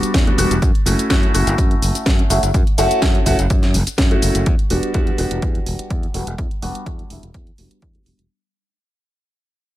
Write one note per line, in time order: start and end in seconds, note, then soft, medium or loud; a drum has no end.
0.00 0.24 G3 medium
0.00 0.24 B3 medium
0.00 0.24 D4 medium
0.00 0.24 F#4 medium
0.00 muted fingered electric bass stroke soft
0.00 closed hi-hat medium
0.00 shaker soft
0.14 0.29 E2 medium
0.14 kick loud
0.14 snare loud
0.14 closed hi-hat medium
0.14 shaker soft
0.27 0.36 G3 medium
0.27 0.36 B3 medium
0.27 0.37 D4 medium
0.27 0.37 F#4 medium
0.27 closed hi-hat soft
0.38 0.46 E1 loud
0.38 0.52 G3 medium
0.38 0.52 B3 medium
0.38 0.52 D4 medium
0.38 0.53 F#4 loud
0.38 open hi-hat loud
0.38 shaker medium
0.51 0.58 E1 loud
0.51 closed hi-hat medium
0.51 shaker soft
0.62 0.70 F#2 loud
0.62 kick loud
0.62 closed hi-hat medium
0.62 shaker soft
0.75 closed hi-hat soft
0.86 0.94 F#1 loud
0.86 1.07 A3 medium
0.86 1.07 C#4 medium
0.86 1.07 E4 medium
0.86 1.08 F#4 medium
0.86 open hi-hat loud
0.86 shaker medium
0.99 muted fingered electric bass stroke soft
0.99 closed hi-hat medium
0.99 shaker soft
1.10 1.25 F#2 loud
1.10 1.31 A3 loud
1.10 1.31 C#4 medium
1.10 1.31 E4 medium
1.10 1.32 F#4 loud
1.10 kick loud
1.10 snare loud
1.10 closed hi-hat medium
1.10 shaker soft
1.23 closed hi-hat soft
1.33 1.42 F#1 loud
1.33 2.27 A3 medium
1.33 2.27 C#4 medium
1.33 2.27 E4 medium
1.33 2.28 F#4 medium
1.33 open hi-hat medium
1.33 shaker medium
1.47 1.54 F#1 loud
1.47 closed hi-hat medium
1.47 shaker soft
1.58 1.73 F#2 medium
1.58 kick loud
1.58 closed hi-hat medium
1.58 shaker soft
1.71 closed hi-hat soft
1.82 1.90 F#1 medium
1.82 open hi-hat loud
1.82 shaker medium
1.95 muted fingered electric bass stroke soft
1.95 closed hi-hat medium
1.95 shaker soft
2.06 2.21 F#2 medium
2.06 kick loud
2.06 snare loud
2.06 closed hi-hat medium
2.06 shaker soft
2.19 closed hi-hat soft
2.30 2.38 F#1 loud
2.30 2.39 A3 medium
2.30 2.39 C#4 medium
2.30 2.39 E4 medium
2.30 2.39 F#4 medium
2.30 open hi-hat medium
2.30 shaker medium
2.43 2.50 F#1 loud
2.43 closed hi-hat medium
2.43 shaker soft
2.54 2.62 F#2 loud
2.54 kick loud
2.54 closed hi-hat medium
2.54 shaker soft
2.67 closed hi-hat soft
2.78 2.86 F#1 loud
2.78 2.99 A3 loud
2.78 2.99 C#4 medium
2.78 3.00 E4 medium
2.78 3.00 F#4 loud
2.78 open hi-hat loud
2.78 shaker medium
2.91 muted fingered electric bass stroke soft
2.91 closed hi-hat medium
2.91 shaker soft
3.02 3.17 F#2 loud
3.02 3.23 A3 medium
3.02 3.23 C#4 medium
3.02 kick loud
3.02 snare loud
3.02 closed hi-hat medium
3.02 shaker soft
3.15 closed hi-hat soft
3.26 3.34 F#1 loud
3.26 3.35 A3 loud
3.26 3.35 C#4 medium
3.26 3.35 E4 medium
3.26 3.35 F#4 loud
3.26 kick medium
3.26 open hi-hat medium
3.26 shaker medium
3.39 3.46 F#1 loud
3.39 closed hi-hat medium
3.39 shaker soft
3.50 3.76 F#2 medium
3.50 kick loud
3.50 closed hi-hat medium
3.50 shaker soft
3.63 snare soft
3.63 closed hi-hat soft
3.74 3.82 F#1 medium
3.74 open hi-hat loud
3.74 shaker medium
3.87 closed hi-hat medium
3.87 shaker soft
3.98 4.13 F#2 loud
3.98 kick loud
3.98 snare loud
3.98 closed hi-hat medium
3.98 shaker soft
4.11 4.45 A3 medium
4.11 4.45 C#4 medium
4.11 4.45 E4 medium
4.11 4.45 F#4 medium
4.11 closed hi-hat soft
4.22 4.30 F#1 medium
4.22 open hi-hat medium
4.22 shaker medium
4.35 4.42 F#1 medium
4.35 closed hi-hat medium
4.35 shaker soft
4.46 4.54 E2 medium
4.46 kick loud
4.46 closed hi-hat medium
4.59 closed hi-hat soft
4.70 4.78 E1 loud
4.70 4.91 G3 medium
4.70 4.92 B3 medium
4.70 4.92 D4 medium
4.70 4.92 F#4 medium
4.70 open hi-hat loud
4.83 muted fingered electric bass stroke soft
4.83 closed hi-hat medium
4.94 5.09 E2 loud
4.94 5.15 G3 loud
4.94 5.15 B3 medium
4.94 5.16 D4 medium
4.94 5.16 F#4 loud
4.94 kick loud
4.94 closed hi-hat soft
5.07 closed hi-hat soft
5.17 5.26 E1 medium
5.17 6.11 G3 medium
5.17 6.11 B3 medium
5.17 6.12 D4 medium
5.17 6.12 F#4 medium
5.17 open hi-hat medium
5.31 5.38 E1 medium
5.31 closed hi-hat medium
5.42 5.57 E2 medium
5.42 kick loud
5.42 closed hi-hat medium
5.55 closed hi-hat soft
5.66 5.74 E1 medium
5.66 open hi-hat loud
5.79 muted fingered electric bass stroke soft
5.79 closed hi-hat medium
5.90 6.05 E2 medium
5.90 kick loud
5.90 closed hi-hat soft
6.03 closed hi-hat soft
6.14 6.22 E1 loud
6.14 6.23 G3 medium
6.14 6.23 B3 medium
6.14 6.23 D4 medium
6.14 6.24 F#4 medium
6.14 open hi-hat medium
6.27 6.34 E1 medium
6.27 closed hi-hat soft
6.38 6.46 E2 medium
6.38 kick loud
6.38 closed hi-hat medium
6.51 closed hi-hat soft
6.62 6.70 E1 medium
6.62 6.83 G3 medium
6.62 6.83 B3 medium
6.62 6.84 D4 medium
6.62 6.84 F#4 loud
6.62 open hi-hat loud
6.75 muted fingered electric bass stroke soft
6.75 closed hi-hat soft
6.86 7.01 E2 medium
6.86 7.07 G3 medium
6.86 7.08 D4 medium
6.86 kick loud
6.86 closed hi-hat soft
6.99 closed hi-hat soft
7.10 7.18 E1 medium
7.10 7.19 G3 medium
7.10 7.19 B3 medium
7.10 7.19 D4 medium
7.10 7.19 E4 medium
7.10 open hi-hat medium
7.23 7.30 E1 medium
7.23 closed hi-hat soft
7.34 7.49 E2 medium
7.34 kick loud
7.34 closed hi-hat soft
7.47 closed hi-hat soft
7.58 7.66 E1 medium
7.58 7.92 G3 medium
7.58 7.92 B3 medium
7.58 7.92 D4 medium
7.58 7.92 F#4 medium
7.58 open hi-hat loud
7.71 muted fingered electric bass stroke soft
7.71 closed hi-hat soft
7.82 7.97 E2 medium
7.82 kick loud
7.82 closed hi-hat soft
7.94 8.04 G3 medium
7.94 8.04 B3 medium
7.94 8.04 D4 medium
7.94 8.05 F#4 medium
7.94 closed hi-hat soft
8.06 8.14 E1 medium
8.06 8.20 G3 medium
8.06 8.20 B3 medium
8.06 8.20 D4 medium
8.06 8.21 F#4 medium
8.06 open hi-hat medium
8.19 8.26 E1 medium
8.19 closed hi-hat soft